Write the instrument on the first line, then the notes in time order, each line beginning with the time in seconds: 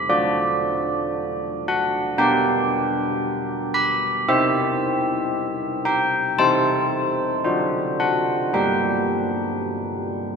church bells
0.09 D4 F#4 A4 D5
1.68 F#5
2.18 B3 G4 D5 G5
3.74 B5
4.29 C4 G4 C5 E5
5.85 G5
6.39 C4 E4 C5 A5
7.45 D4 F#4 C5
8.00 F#5
8.53 G3 G4 B4 G5